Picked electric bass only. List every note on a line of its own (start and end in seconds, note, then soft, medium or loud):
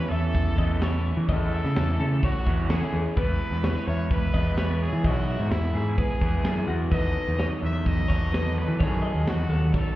0.11 0.53 E2 medium
0.58 1.11 E2 medium
1.17 1.30 E3 medium
1.28 1.60 E2 loud
1.65 1.75 C#3 medium
1.77 1.97 E2 medium
1.99 2.20 C#3 medium
2.47 2.67 E2 loud
2.69 2.80 E2 loud
2.93 3.03 E2 loud
3.17 3.37 E2 loud
3.51 3.62 E2 medium
3.63 3.74 E2 medium
3.87 4.29 E2 loud
4.34 4.86 E2 loud
4.93 5.05 E3 medium
5.04 5.35 B1 loud
5.39 5.50 G#2 medium
5.51 5.72 E2 medium
5.74 5.95 G#2 medium
6.21 6.42 E2 medium
6.44 6.65 F#2 medium
6.67 6.89 E2 medium
6.92 7.13 E2 loud
7.27 7.38 E2 medium
7.38 7.49 E2 medium
7.62 8.04 E2 medium
8.10 8.62 E2 medium
8.68 8.82 E3 medium
8.80 9.11 F#2 loud
9.14 9.25 D#2 medium
9.26 9.47 E2 medium
9.49 9.70 D#2 medium